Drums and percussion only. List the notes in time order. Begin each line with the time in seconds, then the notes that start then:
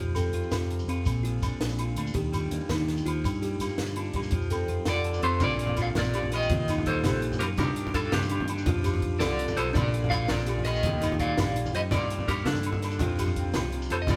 0.15 closed hi-hat, low agogo, shekere
0.33 closed hi-hat
0.43 shekere
0.51 snare, closed hi-hat, low agogo, shekere
0.62 shekere
0.70 closed hi-hat
0.79 shekere
0.89 closed hi-hat, low agogo
1.05 kick, closed hi-hat, low agogo, shekere
1.25 closed hi-hat
1.42 kick, closed hi-hat, low agogo, shekere
1.52 shekere
1.61 snare, closed hi-hat
1.69 shekere
1.79 closed hi-hat, low agogo
1.96 closed hi-hat, low agogo, shekere
2.07 shekere
2.14 kick, closed hi-hat
2.33 closed hi-hat, low agogo, shekere
2.51 closed hi-hat
2.61 shekere
2.69 snare, closed hi-hat, low agogo, shekere
2.79 shekere
2.88 snare, closed hi-hat
2.97 shekere
3.06 closed hi-hat, low agogo
3.24 kick, closed hi-hat, low agogo, shekere
3.35 shekere
3.43 closed hi-hat, shekere
3.60 closed hi-hat, low agogo, shekere
3.69 shekere
3.78 snare, closed hi-hat
3.86 shekere
3.96 closed hi-hat, low agogo, shekere
4.05 shekere
4.13 kick, closed hi-hat, low agogo
4.23 shekere
4.31 kick, closed hi-hat
4.42 shekere
4.50 closed hi-hat, low agogo, shekere
4.59 shekere
4.68 closed hi-hat
4.85 snare, closed hi-hat, low agogo, shekere
5.04 closed hi-hat
5.14 shekere
5.23 closed hi-hat, low agogo
5.40 kick, crash, high conga, low conga, low agogo, shekere
5.59 closed hi-hat
5.67 low conga
5.77 kick, closed hi-hat, low agogo, shekere
5.95 snare, closed hi-hat, high conga, low conga, shekere
6.04 shekere
6.14 closed hi-hat, low agogo
6.23 low conga
6.32 snare, closed hi-hat, low agogo, shekere
6.42 low conga, shekere
6.50 kick, closed hi-hat, high conga, low conga
6.68 closed hi-hat, low agogo, shekere
6.78 low conga
6.86 kick, closed hi-hat, low conga
7.04 snare, closed hi-hat, high conga, low conga, low agogo, shekere
7.22 closed hi-hat
7.32 low conga, shekere
7.40 closed hi-hat, low agogo
7.58 kick, closed hi-hat, high conga, low conga, low agogo, shekere
7.76 closed hi-hat
7.87 low conga
7.94 kick, closed hi-hat, low agogo, shekere
8.12 snare, closed hi-hat, high conga, low conga, shekere
8.22 shekere
8.29 closed hi-hat, low agogo
8.40 low conga
8.48 closed hi-hat, low agogo, shekere
8.58 low conga, shekere
8.66 kick, closed hi-hat, high conga, low conga
8.84 closed hi-hat, low agogo, shekere
8.94 low conga
9.02 kick, closed hi-hat
9.20 snare, closed hi-hat, high conga, low conga, low agogo, shekere
9.39 closed hi-hat
9.48 low conga, shekere
9.57 closed hi-hat, low agogo
9.75 kick, closed hi-hat, high conga, low conga, low agogo, shekere
9.94 closed hi-hat
10.04 low conga
10.11 kick, closed hi-hat, low agogo, shekere
10.28 snare, closed hi-hat, high conga, low conga
10.39 shekere
10.46 closed hi-hat, low agogo, shekere
10.58 low conga
10.65 snare, closed hi-hat, low agogo, shekere
10.76 low conga, shekere
10.83 kick, closed hi-hat, high conga, low conga
11.02 closed hi-hat, low agogo, shekere
11.12 low conga
11.20 kick, closed hi-hat
11.38 snare, closed hi-hat, high conga, low conga, low agogo, shekere
11.56 closed hi-hat
11.65 low conga, shekere
11.75 closed hi-hat, low agogo
11.91 kick, closed hi-hat, high conga, low conga, low agogo, shekere
12.01 shekere
12.10 closed hi-hat, low conga
12.19 low conga, shekere
12.28 kick, closed hi-hat, low agogo, shekere
12.38 shekere
12.45 snare, closed hi-hat, high conga, low conga
12.56 shekere
12.63 closed hi-hat, low agogo
12.73 low conga, shekere
12.82 snare, closed hi-hat, low agogo
12.91 shekere
12.99 kick, closed hi-hat, high conga, low conga
13.09 low conga, shekere
13.18 closed hi-hat, low conga, low agogo, shekere
13.26 low conga, shekere
13.36 kick, closed hi-hat, low conga
13.45 low conga
13.54 snare, closed hi-hat, high conga, low conga, low agogo, shekere
13.63 shekere
13.72 closed hi-hat
13.82 shekere
13.90 closed hi-hat, low agogo, shekere
14.07 kick, closed hi-hat, high conga, low conga, low agogo, shekere